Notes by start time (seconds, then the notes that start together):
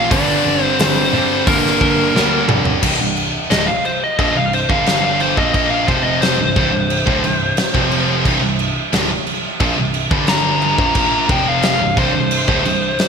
Already playing: F3 A#3 F5
0.09 G1 G2 D3 G3 D5, kick, open hi-hat
0.13 D4
0.45 G1
0.60 C4 C5
0.79 G1 C4 C5, snare, open hi-hat
1.12 G2 D3 G3
1.47 G1 G2 D3 G3 A#3 A#4, kick, open hi-hat
1.66 snare
1.81 G1, kick
2.14 D2 G2 D3 G3, snare
2.48 F1, mid tom
2.65 floor tom
2.82 C1 C2 G2, kick, crash
2.99 C1 C2 G2
3.17 crash
3.50 D1 D2 A2 D#5, snare, crash
3.67 C1 F5, muted distorted electric guitar stroke
3.85 C5, crash
4.04 D#5
4.19 A#1 A#2 F3 D#5, kick, crash
4.35 C1 C2 G2 F5
4.53 C5, crash
4.69 G1 G2 D3 G3 F5, kick
4.86 F5, snare, crash
5.05 F5
5.20 C5, crash
5.37 A#1 A#2 F3 A#3 D#5, kick
5.54 D#5, kick, crash
5.70 F5
5.87 F1 F2 C3 F3 C5, kick, crash
6.03 D#5
6.21 C5, snare, crash
6.39 C1 C2 G2
6.56 C1 C2 G2, kick, crash
6.72 C1 C2 G2
6.90 crash
7.06 D1 D2 A2, kick
7.24 C1 C2 G2, crash
7.57 snare, crash
7.74 F1 F2 C3 F3, kick
7.92 crash
8.25 C1 C2 G2, kick, crash
8.42 C1 C2 G2
8.59 crash
8.93 D1 D2 A2, snare, crash
9.10 C1, muted distorted electric guitar stroke
9.27 crash
9.60 A#1 A#2 F3, kick, crash
9.78 C1 C2 G2
9.94 crash
10.11 G1 G2 D3 G3, kick
10.27 A#5, snare, crash
10.62 crash
10.78 A#1 A#2 F3 A#3, kick
10.95 kick, crash
11.29 F1 F2 C3 F3 G5, kick, crash
11.48 F5
11.62 snare, crash
11.80 C1 C2 G2
11.97 C1 C2 G2 C5, kick, crash
12.14 C1 C2 G2
12.31 crash
12.48 D1 D2 A2, kick
12.65 C1 C2 G2, crash
12.99 snare, crash